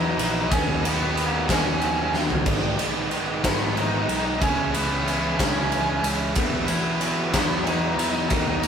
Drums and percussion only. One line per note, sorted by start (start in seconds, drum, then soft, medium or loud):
0.19 ride medium
0.52 kick loud
0.52 ride loud
0.85 ride medium
1.17 ride medium
1.49 kick medium
1.49 snare loud
1.49 ride loud
1.82 ride medium
2.14 snare medium
2.30 floor tom medium
2.46 kick loud
2.46 crash loud
2.79 ride medium
3.11 ride medium
3.44 kick medium
3.44 snare loud
3.44 ride loud
3.77 ride medium
4.09 ride medium
4.42 kick loud
4.42 ride loud
4.74 ride medium
5.08 ride medium
5.39 kick medium
5.39 snare loud
5.39 ride loud
5.72 ride medium
6.04 ride medium
6.35 kick loud
6.35 ride loud
6.68 ride medium
7.01 ride medium
7.34 kick medium
7.34 snare loud
7.34 ride loud
7.67 ride medium
7.99 ride medium
8.30 kick loud
8.30 ride loud
8.63 ride medium